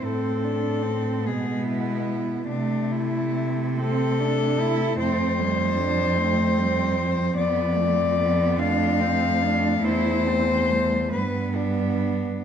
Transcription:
X:1
M:6/8
L:1/8
Q:3/8=49
K:Flyd
V:1 name="Cello"
A3 ^G E2 | D E2 A3 | c6 | d3 f3 |
c3 B D2 |]
V:2 name="Cello"
C D C B,3 | A,3 C D E | C A, D C3 | B, A, B, D C D |
E C G, B,3 |]
V:3 name="Cello" clef=bass
C3 ^G,3 | A,3 A,3 | A, G, F, A, G, F,- | F,3 A,3- |
A,3 G,3 |]
V:4 name="Cello" clef=bass
A,,3 B,,3 | C,6 | F,,6 | F,,6 |
E,,3 G,,3 |]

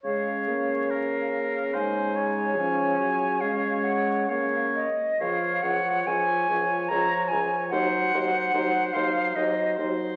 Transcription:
X:1
M:3/4
L:1/8
Q:1/4=72
K:Db
V:1 name="Flute"
f2 f2 a2 | a2 f g f e | f g a2 b a | g3 f e z |]
V:2 name="Oboe"
d2 B2 c d- | d4 d z | d d d d d d | c c c c c c |]
V:3 name="Clarinet"
D4 E2 | D2 D2 D z | F F F F F F | E E E E E E |]
V:4 name="French horn" clef=bass
A, B,3 A,2 | F, G, A,2 B, z | F, F, F, F, F, F, | G, G, G, G, G, G, |]
V:5 name="Bassoon" clef=bass
D,6- | D,4- D, z | D,, D,, D,, D,, D,, D,, | E,, E,, E,, E,, E,, E,, |]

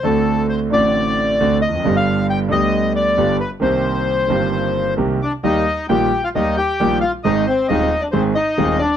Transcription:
X:1
M:4/4
L:1/16
Q:1/4=134
K:Cm
V:1 name="Bandoneon"
=A4 c2 d8 e2- | e f3 g2 e4 d4 =B2 | c12 z2 [Dd]2 | [K:Eb] [Ee]4 [Gg]3 [Ff] [Ee]2 [Gg]4 [Ff]2 |
[Ee]2 [Cc]2 [Ee]3 [Dd] [Cc]2 [Ee]4 [Dd]2 |]
V:2 name="Grand piano" clef=bass
[D,,D,=A,C^F]6 [=A,,,=A,,D,A,CF]6 [D,,D,A,CF]2 z/2 =E,,/2 =F,,/2 ^F,,/2 | [G,,,G,,D,G,=B,G]6 [D,,D,G,B,G]6 [G,,,G,,D,G,B,G]2 z2 | [C,,C,E,B,CG]6 [G,,,G,,E,B,CG]6 [C,,C,E,B,CG]2 z2 | [K:Eb] [E,,E,G,B,G]2 z2 [B,,,B,,E,G,B,G]2 z2 [E,,E,G,B,G]2 z2 [B,,,B,,E,G,B,G]2 z2 |
[A,,,A,,E,A,CA]2 z2 [E,,,E,,E,A,CA]2 z2 [A,,,A,,E,A,CA]2 z2 [E,,,E,,E,A,CA]2 z2 |]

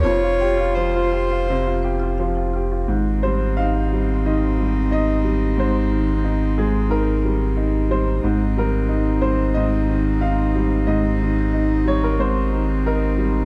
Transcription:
X:1
M:4/4
L:1/16
Q:1/4=90
K:Ab
V:1 name="Marimba"
F z g F g c F z F f c F f g F z | z16 | z16 | z16 |
z16 |]
V:2 name="Violin"
d4 c8 z4 | E16- | E16 | E16- |
E16 |]
V:3 name="Grand piano"
z16 | z2 c2 f4 e4 e4 | c6 A2 B6 c2 | z2 B4 c2 e4 f4 |
e6 d B c4 B4 |]
V:4 name="Grand piano" clef=bass
F,, F G F F, F G F C, F G F F, F G F | A,,2 G,2 E2 G,2 E,2 G,2 E2 G,2 | A,,2 E,2 E2 A,2 E,2 G,2 E2 G,2 | A,,2 G,2 E2 G,2 A,,2 E,2 E2 G,2 |
A,,2 E,2 E2 G,2 A,,2 E,2 E2 G,2 |]
V:5 name="Cello"
F12- F2 z2 | C16- | C16 | C16- |
C16 |]
V:6 name="Sub bass" clef=bass
F,,,16 | A,,,16- | A,,,16 | A,,,16- |
A,,,16 |]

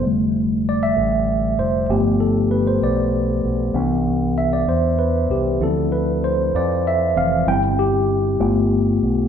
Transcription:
X:1
M:6/8
L:1/16
Q:3/8=65
K:C
V:1 name="Tine electric piano"
z4 d e4- e c2 | G2 A2 B c d4 z2 | z4 e d c2 B2 G2 | A2 B2 c2 d2 e2 f2 |
g2 G6 z4 |]
V:2 name="Tine electric piano"
[D,G,A,]12 | [F,A,B,]2 z8 z2 | [E,B,D]2 z8 z2 | [F,CE]6 z4 [E,F,C]2 |
[G,CE]2 z4 [A,B,F]6 |]
V:3 name="Fingered electric bass" clef=bass
F,,,6 A,,,4 F,,,2 | G,,,6 B,,,4 B,,,2 | C,,6 E,,4 C,,2 | D,,6 F,,4 F,,,2 |
G,,,6 G,,,4 B,,,2 |]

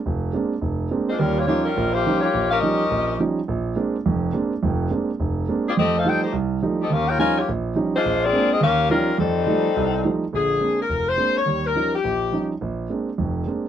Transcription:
X:1
M:4/4
L:1/8
Q:"Swing" 1/4=210
K:Eblyd
V:1 name="Saxophone section"
z6 z [_A,DFc] | [G,_DFB] [B,FG_d] [B,FGd] [G,DFB]2 [B,FGc]2 [B,FGd]- | [B,FG_d] [_DGBf] [DGBe]4 z2 | z8 |
z6 z [CF_Ad] | [CGAe] [EAcf] [EAcg] [A,EGc] z3 [CGAe] | [_DGBf] [FB_dg] [FBd_a] [B,FGd] z3 [_A,=DFc]- | [_A,DFc] [CF_Ad]2 [CFAe] [_DGBf]2 [G,DFB]2 |
[G,CEA]6- [G,CEA] z | [K:Bbmix] A3 B2 c2 _d- | _d B2 G4 z | z8 |]
V:2 name="Grand piano" clef=bass
F,,,2 [_A,B,CD] z F,,,2 [A,B,CD] z | [E,,G,]2 [F,G,_DE] z B,,,2 [F,G,DE] z | B,,,2 [F,G,_DE] z B,,,2 [F,G,DE] z | B,,,2 [_A,B,CD] z [F,,,F,,]2 [A,B,CD] z |
[F,,,F,,]2 [_A,B,CD] z F,,,2 [A,B,CD] z | [F,,A,]2 [F,G,A,E] z C,,2 [F,G,A,E] z | E,,2 [F,G,_DE] z B,,,2 [F,G,DE] z | B,,,2 [_A,B,CD] z E,,2 [F,G,_DE] z |
F,,2 [F,G,A,E] z C,,2 [F,G,A,E] z | [K:Bbmix] [B,,,D,]2 [A,B,CD] z F,,,2 [A,B,CD] z | [E,,G,]2 [F,G,_DE] z B,,,2 [F,G,DE] z | B,,,2 [A,B,CD] z [F,,,F,,]2 [A,B,CD] z |]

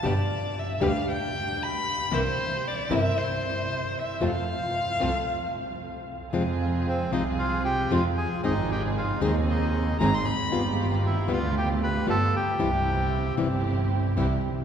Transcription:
X:1
M:4/4
L:1/16
Q:1/4=115
K:F
V:1 name="Violin"
d4 e2 f2 g4 =b4 | c4 d2 e2 c6 e2 | f12 z4 | [K:Fm] z16 |
z12 b c' =b2- | =b3 z12 z | z16 |]
V:2 name="Bandoneon"
z16 | z16 | z16 | [K:Fm] z4 C2 E2 F2 G2 F2 A2 |
E2 G2 F2 E2 E4 z4 | z4 =E2 F2 G2 =B2 =A2 G2- | G6 z8 z2 |]
V:3 name="String section"
[DG=B]2 z4 [DGB]2 z8 | [CEB]2 z4 [CEB]2 z8 | [CFA]2 z4 [CFA]2 z8 | [K:Fm] [CFA]6 [CFA]6 [CFA]2 z2 |
[CEA]6 [CEA]6 [CEA]2 z2 | [=B,FG]6 [B,FG]6 [B,FG]2 z2 | [C=EG]6 [CEG]6 [CEG]2 z2 |]
V:4 name="Nylon-string guitar"
[=B,,D,G,=B,G]2 z4 [B,,D,G,B,G]2 z8 | [C,E,B,CE]2 z4 [C,E,B,CE]2 z8 | [C,F,A,CF]2 z4 [C,F,A,CF]2 z8 | [K:Fm] [C,F,A,CF]2 z4 [C,F,A,CF]2 z4 [C,F,A,CF]2 z2 |
[E,A,CEA]2 z4 [E,A,CEA]2 z4 [E,A,CEA]2 z2 | [G,=B,F]2 z4 [G,B,F]2 z4 [G,B,F]2 z2 | [C,=E,G,C=E]2 z4 [C,E,G,CE]2 z4 [C,E,G,CE]2 z2 |]
V:5 name="Double bass" clef=bass
G,,,2 z4 D,,2 z8 | C,,2 z4 G,,,2 z8 | F,,2 z4 C,,2 z8 | [K:Fm] F,,6 C,,6 F,,2 z2 |
A,,,6 E,,6 A,,,2 z2 | G,,,6 =D,,6 G,,,2 z2 | C,,6 G,,,6 C,,2 z2 |]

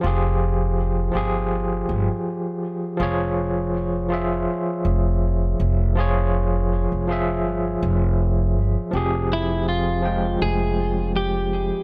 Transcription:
X:1
M:4/4
L:1/16
Q:"Swing 16ths" 1/4=81
K:Fm
V:1 name="Clean electric guitar"
z16 | z16 | z16 | z2 =E2 F4 A4 G4 |]
V:2 name="Tine electric piano"
[F,FGA]6 [F,FGA]8- [F,FGA]2 | [F,FAd]6 [F,FA=e]8- [F,FAe]2 | [F,FAd]6 [F,FA=e]8- [F,FAe]2 | [F,CGA]6 [F,A,Fg]8- [F,A,Fg]2 |]
V:3 name="Upright bass" clef=bass
F,,,6 G,,,4 G,,, z4 z | F,,,8 z2 F,,,4 F,,,2- | F,,,4- F,,, F,,,3 G,,,2 F,,,4 G,,, z | F,,,8 F,,,6- F,,, z |]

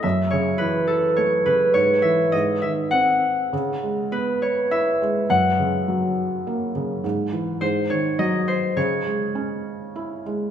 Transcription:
X:1
M:3/4
L:1/16
Q:1/4=103
K:C#m
V:1 name="Harp"
e2 c2 B2 A2 c2 B2 | c2 e2 d2 e2 f3 z | z4 B2 c2 e4 | f8- f2 z2 |
z4 ^B2 c2 d2 B2 | c8 z4 |]
V:2 name="Felt piano" clef=bass
F,,2 C,2 E,4 A,2 C,2 | G,,2 E,2 G,,2 D,2 ^B,4 | C,2 G,2 B,4 E2 G,2 | F,,2 C,2 F,4 ^A,2 C,2 |
G,,2 E,2 G,,2 D,2 F,4 | C,2 G,2 C4 E2 G,2 |]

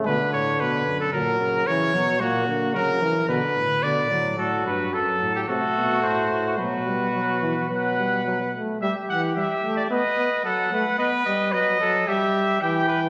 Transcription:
X:1
M:4/4
L:1/16
Q:1/4=111
K:Bm
V:1 name="Trumpet"
z16 | z16 | [K:Em] A2 B2 A3 G A4 c4 | B8 f6 z2 |
e2 f2 e3 d ^d4 f4 | B4 ^d4 e4 g4 |]
V:2 name="Trumpet"
B2 c2 B3 A ^A4 c4 | F4 ^A4 B4 d4 | [K:Em] F4 A4 F8 | F8 B6 z2 |
G8 B4 A2 B2 | ^d2 d2 B2 A2 G4 G2 B2 |]
V:3 name="Trombone" clef=bass
D,8 F,4 E,2 F,2 | ^A,2 A,2 F,2 E,2 D,2 z2 D,2 F,2 | [K:Em] F,8 A,8 | F,2 G,2 F,2 E,2 F,2 G,2 F,2 A,2 |
G,2 E,2 G,2 A,2 B,2 B,2 F,2 A,2 | B,2 G,2 F,2 F,2 G,4 E,4 |]
V:4 name="Bass trombone" clef=bass
B,,2 A,,2 B,,2 F,,2 ^A,,2 C,2 C,2 B,,2 | ^A,,2 D,2 C,2 C,2 B,,2 =A,,2 B,,2 A,,2 | [K:Em] A,,2 G,,2 F,,2 A,,2 C,2 B,,2 A,,2 A,,2 | B,,8 B,,6 z2 |
z16 | z16 |]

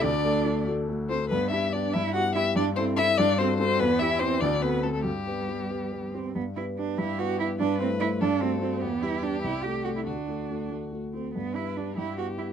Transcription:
X:1
M:6/8
L:1/16
Q:3/8=96
K:G
V:1 name="Violin"
d6 z4 c2 | B2 e2 d2 e2 f2 e2 | d2 c2 e2 d2 c2 c2 | B2 e2 c2 d2 B2 A A |
G8- G2 z2 | z6 G6 | B6 A6 | G12 |
F8- F z3 | B6 G6 |]
V:2 name="Grand piano"
D,,2 [A,FA]2 [A,FA]2 [A,FA]2 [A,FA]2 [A,FA]2 | G,,2 [B,DG]2 [B,DG]2 G,,2 [B,EG]2 [B,EG]2 | G,,2 [CEA]2 [CEA]2 G,,2 [CFA]2 [CFA]2 | E,,2 [B,EG]2 [B,EG]2 D,,2 [CFA]2 [CFA]2 |
G,,2 [B,GB]2 [B,GB]2 [B,GB]2 [B,GB]2 [B,GB]2 | G,,2 [B,GB]2 [B,GB]2 G,,2 [B,EB]2 [B,EB]2 | G,,2 [A,Ec]2 [A,Ec]2 G,,2 [A,Fc]2 [A,Fc]2 | E,,2 [G,GB]2 [G,GB]2 C,,2 [A,GA]2 [A,GA]2 |
D,,2 [A,FA]2 [A,FA]2 [A,FA]2 [A,FA]2 [A,FA]2 | G,,2 [B,DG]2 [B,DG]2 G,,2 [B,EG]2 [B,EG]2 |]
V:3 name="Cello"
D6 z4 C2 | B,2 E2 D2 E2 F2 E2 | D2 C2 E2 D2 C2 C2 | B,2 E2 C2 D2 B,2 A, A, |
G,8- G,2 C2 | B,2 E2 D2 E2 F2 E2 | D2 C2 E2 D2 C2 C2 | B,2 E2 D2 E2 G2 F E |
D6 z4 C2 | B,2 E2 D2 E2 F2 E2 |]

